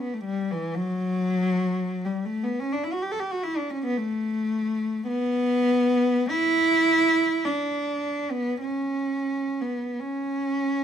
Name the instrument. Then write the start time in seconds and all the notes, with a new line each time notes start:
cello
0.00 B3
0.14 A3
0.25 G3
0.51 E3
0.75 F#3
2.05 G3
2.25 A3
2.44 B3
2.60 C#4
2.72 D4
2.84 E4
2.93 F#4
3.02 G4
3.12 A4
3.20 G4
3.31 F#4
3.44 E4
3.57 D4
3.70 C#4
3.85 B3
3.97 A3
5.08 B3
6.31 E4
7.45 D4
8.31 B3
8.61 C#4
9.61 B3
10.00 C#4